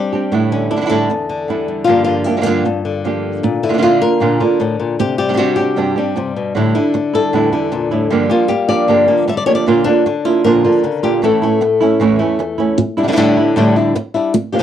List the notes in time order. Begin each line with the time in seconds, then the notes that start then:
Already playing: G3 C4 D4 G4
0.13 C4 D4 G4
0.32 A2 D3 G3 D4 E4
0.52 D3 C#4
0.71 G3 D4 E4
0.76 D3 G3 D4 E4
0.81 D3 G3 D4 E4
0.86 D3 G3 D4 E4 A4
0.90 A2 D3 G3 D4 E4
1.10 E2, muted nylon-string guitar stroke
1.29 D3
1.48 D3 G3 D4 E4
1.68 G3
1.85 G2 D3 F3 A#3 F4
1.89 A#3 D4 G4
2.05 D3 F4
2.24 A#3 D4 E4 G4
2.29 F3
2.37 D3 F3 A#3 D4 G4
2.41 D3 F3 A#3 D4 F4 G4
2.46 G2 D3 F3 A#3 D4 G4
2.65 G2, muted nylon-string guitar stroke
2.85 D3
3.04 F3 A#3 D4 G4
3.43 A#2, muted nylon-string guitar stroke
3.63 D3 E4
3.69 D3 A#3 D4 F4
3.73 D3 A#3 D4 F4
3.78 D3 A#3 D4 F4
3.82 A#2 D3 A#3 D4 F4
4.01 A#3 D4 F4 A#4
4.20 A#2 D3 A#3 D4 F4
4.40 D3 A#3 D4 F4
4.60 A2, muted nylon-string guitar stroke
4.79 A#2
4.99 C3 G4, muted nylon-string guitar stroke
5.18 G3 G4
5.29 G3 C4 D4 G4
5.33 G3 C4 D4 F#4 G4
5.38 C3 G3 C4 D4 G4
5.56 D4 G4
5.60 C4
5.76 G2 C3 G3 C4 D4 G4
5.96 G3 C4 D4 G4
6.16 C3, muted nylon-string guitar stroke
6.36 B2
6.55 A2 D3 G3 D4 E4
6.75 D3 G3 D4 E4
6.94 E4, muted nylon-string guitar stroke
7.13 G3 D4 E4 A4
7.33 E2 A2 D3 G3 D4 E4
7.52 D3 G3 D4 E4
7.72 A#2, muted nylon-string guitar stroke
7.91 A2 G3 D4 E4
8.10 G2 D3 F3 G3 A#3 D4 G4
8.29 F3 A#3 D4 F4 G4
8.48 G4, muted nylon-string guitar stroke
8.69 F3 A#3 D4 G4 D5
8.88 G2 D3 F3 A#3 D4 G4
9.07 F3 A#3 D4 G4
9.28 G3 E5, muted nylon-string guitar stroke
9.37 D5
9.46 F3 A3 A#3 D4 G4 C#5
9.55 D5
9.66 A#2 D3 A#3 D4 F4
9.84 D3 D4 F4
9.89 A#3
10.06 D3, muted nylon-string guitar stroke
10.25 A#3 D4 E4 F4
10.44 A#2 D3 F3 A#3 D4 F4 A#4
10.64 D3 A#3 D4 F4
10.84 C#3, muted nylon-string guitar stroke
11.03 A#2 A#3 D4 F4 G4
11.22 A2 E3 A3 C#4 E4 A4
11.42 A3 C#4 E4
11.61 muted nylon-string guitar stroke
11.81 A3 C#4 E4
12.00 E2 A2 E3 A3 C#4 E4
12.19 A3 C#4 E4
12.39 muted nylon-string guitar stroke
12.58 A3 C#4 E4
12.78 muted nylon-string guitar stroke
12.97 G3 D4 E4
13.03 D3 G3 D4 E4
13.08 D3 G3 D4 E4
13.12 D3 G3 D4 E4
13.16 A2 D3 G3 D4 E4
13.37 G3 D4 E4
13.56 A2 D3 G3 D4 E4
13.76 G3 D4 E4
13.95 muted nylon-string guitar stroke
14.14 G3 D4 E4
14.35 muted nylon-string guitar stroke
14.52 F3 A#3 D4 G4
14.59 D3 F3 A#3